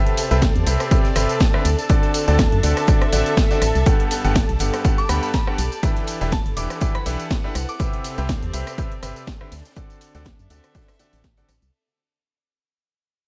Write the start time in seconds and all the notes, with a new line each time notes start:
Already playing: C3 C4 E4 G4 A4 B4 E5 G5 A5
0.06 closed hi-hat
0.17 G4, snare, closed hi-hat, open hi-hat, ride, tambourine
0.31 C2 C3 C4 G4 B4 D5 E5, closed hi-hat, tambourine
0.42 kick, snare, closed hi-hat, tambourine
0.56 E2, closed hi-hat
0.67 C2 C3 C4 G4 B4 E5, closed hi-hat, open hi-hat, ride, tambourine
0.80 cross-stick, snare, closed hi-hat, tambourine
0.91 C3 C4 G4 B4 E5, kick, closed hi-hat, tambourine
1.05 snare, closed hi-hat
1.16 G1 C3 C4 G4 B4 E5, cross-stick, closed hi-hat, open hi-hat, ride, tambourine
1.29 closed hi-hat, tambourine
1.40 kick, snare, closed hi-hat, tambourine
1.54 D3 C4 G4 B4 E5, cross-stick
1.65 D2 D4, closed hi-hat, open hi-hat, ride, tambourine
1.79 closed hi-hat, tambourine
1.89 D3 C4 F#4 A4 D5, kick, closed hi-hat, tambourine
1.94 A4
2.03 snare, closed hi-hat
2.14 closed hi-hat, open hi-hat, ride, tambourine
2.28 D2 D3 C4 F#4 A4 D5, snare, closed hi-hat, tambourine
2.39 E5, kick, snare, closed hi-hat, tambourine
2.52 F#2, closed hi-hat
2.63 D2 D3 C4 F#4 A4 D5, closed hi-hat, open hi-hat, ride, tambourine
2.77 cross-stick, snare, closed hi-hat, tambourine
2.87 D3 C4 F#4 A4 D5, kick, closed hi-hat, tambourine
3.02 cross-stick, closed hi-hat
3.12 A1 D3 C4 F#4 A4 D5, closed hi-hat, open hi-hat, ride, tambourine
3.26 closed hi-hat, tambourine
3.37 kick, snare, closed hi-hat, tambourine
3.51 D3 C4 F#4 A4 D5, snare, closed hi-hat, tambourine
3.62 A1, cross-stick, closed hi-hat, open hi-hat, ride, tambourine
3.75 C2, closed hi-hat, tambourine
3.86 G2 B3 G4 A4 F#5, kick, closed hi-hat, tambourine
4.00 closed hi-hat
4.11 snare, closed hi-hat, open hi-hat, ride, tambourine
4.22 G1 G2 B3 G4 A4 D5 F#5, closed hi-hat, tambourine
4.35 kick, snare, closed hi-hat, tambourine
4.49 B1, closed hi-hat
4.59 G1 G2 B3 G4 A4 F#5, closed hi-hat, open hi-hat, ride, tambourine
4.74 A5, cross-stick, snare, closed hi-hat, tambourine
4.84 G2 B3 G4 A4 F#5, kick, closed hi-hat, tambourine
4.98 D6, snare, closed hi-hat
5.09 D2 G2 B3 G4 A4 F#5 B5, cross-stick, closed hi-hat, open hi-hat, ride, tambourine
5.23 B5, closed hi-hat, tambourine
5.34 B5, kick, snare, closed hi-hat, tambourine
5.47 G2 B3 G4 A4 F#5, cross-stick
5.58 B1, closed hi-hat, open hi-hat, ride, tambourine
5.72 closed hi-hat, tambourine
5.83 E3 D4 E4 G4 B4 E5, kick, closed hi-hat, tambourine
5.96 snare, closed hi-hat
6.06 B4, closed hi-hat, open hi-hat, ride, tambourine
6.21 E1 E3 D4 G4 B4 E5, snare, closed hi-hat, tambourine
6.32 A5, kick, snare, closed hi-hat, tambourine
6.46 G1, closed hi-hat
6.57 E1 E3 D4 G4 B4 E5 D6, closed hi-hat, open hi-hat, ride, tambourine
6.61 F#5
6.70 cross-stick, snare, closed hi-hat, tambourine
6.81 E3 D4 G4 B4 E5, kick, closed hi-hat, tambourine
6.95 B5, cross-stick, closed hi-hat
7.06 B1 E3 D4 G4 B4 E5, closed hi-hat, open hi-hat, ride, tambourine
7.20 closed hi-hat, tambourine
7.31 kick, snare, closed hi-hat, tambourine
7.44 D4 G4 B4 E5, snare
7.55 C2 C4, cross-stick, closed hi-hat, open hi-hat, ride, tambourine
7.69 D6, closed hi-hat, tambourine
7.73 G4
7.79 C3 C4 G4 B4 E5, kick, closed hi-hat, tambourine
7.93 closed hi-hat
8.04 snare, closed hi-hat, open hi-hat, ride, tambourine
8.18 C2 C3 C4 G4 B4 E5, closed hi-hat, tambourine
8.29 kick, snare, closed hi-hat, tambourine
8.43 E2 D5, closed hi-hat
8.53 C2 C3 C4 G4 B4 E5, closed hi-hat, open hi-hat, ride, tambourine
8.67 cross-stick, snare, closed hi-hat, tambourine
8.78 C3 C4 G4 B4 E5, kick, closed hi-hat, tambourine
8.92 closed hi-hat
9.03 G1 C3 C4 G4 B4 E5, cross-stick, closed hi-hat, open hi-hat, ride, tambourine
9.16 closed hi-hat, tambourine
9.27 kick, snare, closed hi-hat, tambourine
9.41 D3 C4 G4 B4 E5, cross-stick
9.51 D2 D4, snare, closed hi-hat, open hi-hat, ride, tambourine
9.58 snare, closed hi-hat
9.65 snare, closed hi-hat, tambourine
9.71 snare, closed hi-hat
9.76 D3 C4 F#4 A4 D5, kick, closed hi-hat, tambourine
9.90 snare, closed hi-hat, tambourine
10.01 A4, closed hi-hat, open hi-hat, ride, tambourine
10.14 D2 D3 C4 F#4 A4 D5, snare, closed hi-hat, tambourine
10.25 E5, kick, snare, closed hi-hat, tambourine
10.39 F#2, closed hi-hat, tambourine
10.50 D2 D3 C4 F#4 A4 D5, snare, closed hi-hat, open hi-hat, ride, tambourine
10.64 cross-stick, snare, closed hi-hat, tambourine
10.75 D3 C4 F#4 A4 D5, kick, snare, closed hi-hat, tambourine
10.81 snare, closed hi-hat
10.88 cross-stick, snare, closed hi-hat, tambourine
10.94 snare, closed hi-hat
10.99 D3 C4 F#4 A4 D5, snare, open hi-hat, ride, tambourine
11.13 A1, snare, closed hi-hat, tambourine
11.24 kick, snare, closed hi-hat, tambourine
11.37 D3 C4 F#4 A4 D5, snare, closed hi-hat, tambourine
11.48 A1, cross-stick, snare, closed hi-hat, open hi-hat, ride, tambourine
11.62 C2, closed hi-hat, tambourine